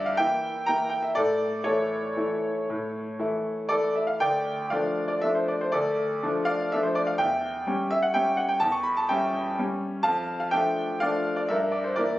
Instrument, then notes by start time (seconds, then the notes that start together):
grand piano
Already playing: G2 D5 E5
0.06 F5
0.17 E3 A#3 E4 E5 G5
0.66 E3 A#3 E4 G5 A#5
0.90 G5
1.03 E5
1.15 A2 A4 D5
1.64 E3 A3 E4 A4 C#5
2.16 E3 A3 E4
2.70 A2
3.19 E3 A3 E4
3.69 E3 A3 E4 A4 D5
3.96 E5
4.07 F5
4.20 D2 D5 G5
4.70 F3 A3 D4 D5 F5
5.08 D5
5.21 F3 A3 D4 E5
5.35 C5
5.48 D5
5.61 C5
5.72 D2 A4 D5
6.23 F3 A3 D4
6.45 D5 F5
6.72 F3 A3 D4 E5
6.83 C5
6.95 D5
7.07 F5
7.18 E2 E5 G5
7.67 G3 C#4
7.91 E5
8.02 F#5
8.14 G3 C#4 E5 G5
8.37 F#5
8.49 G5
8.60 E2 A5
8.72 C#6
8.83 B5
8.97 A5
9.09 G3 C#4 E5 G5
9.58 G3 C#4
10.03 F2 F5 A5
10.40 F5
10.51 F3 A3 D4 E5 G5
11.00 F3 A3 D4 D5 F5
11.36 D5
11.48 G2 A#4 E5
11.72 D5
11.84 C5
11.96 E3 A#3 E4 A#4 D5